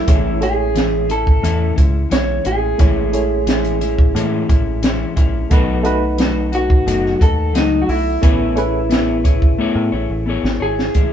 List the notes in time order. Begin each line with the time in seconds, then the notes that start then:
Already playing: E4
0.06 A1 A2 E3 G#3 A3 C#4 E4 G#4 C#5, kick, closed hi-hat
0.41 G#3 A3 C#4 E4 G#4 C#5, closed hi-hat
0.75 E3 G#3 C#4 E4, snare, closed hi-hat
1.09 C#4 E4 A4, closed hi-hat
1.27 kick
1.42 E2 A2 E3 C#4 E4, closed hi-hat
1.76 C#2 G#3 C#4 E4, kick, closed hi-hat
2.10 B1 E3 G#3 C#4 E4 C#5, snare, closed hi-hat
2.44 A1 G#3 C#4 E4 G#4, closed hi-hat
2.78 A1 A2 E3 G#3 A3 C#4 E4 G#4 C#5, kick, closed hi-hat
3.12 G#3 A3 C#4 E4 G#4 C#5, closed hi-hat
3.46 E3 G#3 C#4 E4, snare, closed hi-hat
3.65 closed hi-hat
3.81 G#3 C#4 E4, closed hi-hat
3.98 kick
4.14 A2 E3 G#3 C#4 E4, closed hi-hat
4.49 A1 G#3 C#4 E4, kick, closed hi-hat
4.82 E3 G#3 C#4 E4, snare, closed hi-hat
5.16 A#1 G#3 C#4 E4, kick, closed hi-hat
5.50 B1 B2 F#3 A3 D#4 F#4 B4, kick, closed hi-hat
5.83 A3 D#4 F#4 B4, closed hi-hat
5.88 A3
6.18 F#3 A3 D#4 F#4, snare, closed hi-hat
6.52 A3 D#4 F#4, closed hi-hat
6.70 kick
6.86 F#1 B2 F#3 A3 D#4 F#4, closed hi-hat
7.06 snare
7.20 D#2 A3 D#4 F#4 A4, kick, closed hi-hat
7.53 C#2 F#3 A3 D#4 F#4, snare, closed hi-hat
7.82 F#4
7.87 B1 A3 E4 F#4, open hi-hat
8.21 A1 A3 B3 C#4 E4 G#4 B4 C#5, kick, closed hi-hat
8.55 A3 C#4 E4 G#4 B4 C#5, closed hi-hat
8.89 B3 E4 G#4 C#5, snare, closed hi-hat
9.24 E4 G#4 C#5, kick, closed hi-hat
9.42 kick
9.58 A3 B3 E4 G#4 C#5
9.75 A2
9.92 A1 E4 G#4 C#5
10.10 A1
10.26 B3 E4 G#4 C#5
10.43 G#1, snare
10.60 G#1 E4 G#4 C#5
10.79 snare
10.94 A2 E3 G#3 C#4 E4, kick, closed hi-hat